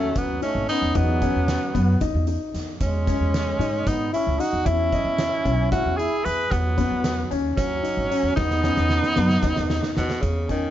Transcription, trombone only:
Already playing: F#3
0.16 F#3
0.44 A3
0.70 B3
0.96 F#3
2.81 G#3
3.87 B3
4.14 C#4
4.39 D#4
4.67 C#4
5.72 C#4
6.00 E4
6.26 G#4
6.54 F#3
7.56 F#3
8.37 B3

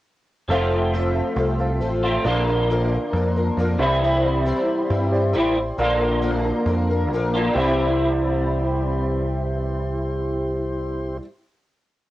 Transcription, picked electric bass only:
0.49 F1
1.36 C2
1.81 A1
2.25 A#1
3.13 F2
3.57 F2
3.79 C2
4.90 G2
5.34 A1
5.78 A#1
6.66 F2
7.12 A#1
7.56 C2

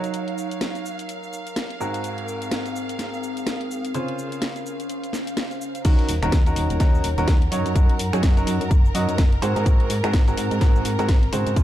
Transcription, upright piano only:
Already playing: F#3 D#4 F#4 A#4 C#5
1.80 G#2 C4 F#4 G#4 A#4
3.94 C#3 C#4 F4 G#4 C5
5.85 D#3 C#4 D#4 F#4 A#4
6.23 D#3 C#4 D#4 F#4 A#4
6.47 D#3 C#4 D#4 F#4 A#4
6.80 D#3 C#4 D#4 F#4 A#4
7.18 D#3 C#4 D#4 F#4 A#4
7.52 F#3 C#4 D#4 F#4 C#5
7.75 F#3 C#4 D#4 F#4 A#4
8.13 F#3 C#4 D#4 F#4 G#4
8.37 F#3 C#4 D#4 F#4 A#4
8.94 F#3 C#4 D#4 F#4 D#5
9.42 G#2 C4 F#4 G#4 C5
9.56 G#2 C4 F#4 G#4 A#4
9.66 G#2 C4 F#4 G#4 A#4
10.04 G#2 C4 F#4 G#4 A#4
10.28 G#2 C4 F#4 G#4 A#4
10.61 G#2 C4 F#4 G#4 A#4
10.99 G#2 C4 F#4 G#4 A#4
11.32 C#3 C4 F#4 G#4 C5
11.56 C#3 C#4 F4 G#4 C5

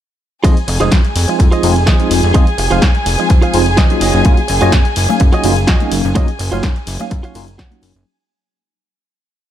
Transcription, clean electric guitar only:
0.44 F4 G#4 C5 D#5
0.68 muted clean electric guitar stroke
0.80 F4 G#4 C5 D#5
1.04 muted clean electric guitar stroke
1.28 muted clean electric guitar stroke
1.39 muted clean electric guitar stroke
1.51 F4 G#4 C5 D#5
1.86 F4 G#4 C5 D#5
2.34 F4 G#4 C5 D#5
2.58 muted clean electric guitar stroke
2.70 F4 G#4 C5 F5
2.94 muted clean electric guitar stroke
3.18 muted clean electric guitar stroke
3.29 muted clean electric guitar stroke
3.42 F4 G#4 C5 F5
3.77 F4 G#4 C5 D#5
4.00 F4 F#4 C#5 D#5
4.48 muted clean electric guitar stroke
4.61 F4 F#4 C#5 D#5
4.85 muted clean electric guitar stroke
5.09 muted clean electric guitar stroke
5.20 muted clean electric guitar stroke
5.32 F4 F#4 C#5 D#5
5.67 F4 F#4 C#5 D#5
6.15 F4 F#4 C#5 D#5
6.39 muted clean electric guitar stroke
6.52 F4 F#4 C#5 F5
6.76 muted clean electric guitar stroke
6.99 muted clean electric guitar stroke
7.10 muted clean electric guitar stroke
7.23 F4 F#4 C#5 F5
7.58 F4 F#4 C#5 F#5

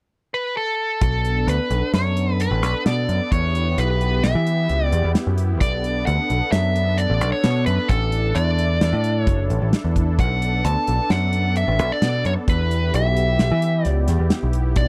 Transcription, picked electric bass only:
1.02 B1
1.47 D2
1.71 B1
1.93 F#2
2.51 A1
2.62 B1
2.86 B2
3.09 F#2
3.32 E2
3.78 B1
4.23 B1
4.35 E3
4.70 C#2
4.93 E2
5.04 E2
5.27 F#2
5.61 B1
6.07 D2
6.30 B1
6.52 F#2
7.10 A1
7.21 B1
7.44 B2
7.67 F#2
7.89 A1
8.36 E2
8.82 E2
8.93 A2
9.27 F#1
9.50 A1
9.62 A1
9.84 E2
10.19 B1
10.65 D2
10.88 B1
11.10 F#2
11.68 A1
11.79 B1
12.02 B2
12.25 F#2
12.48 E2
12.94 B1
13.40 B1
13.51 E3
13.86 C#2
14.09 E2
14.20 E2
14.43 B1
14.76 B1

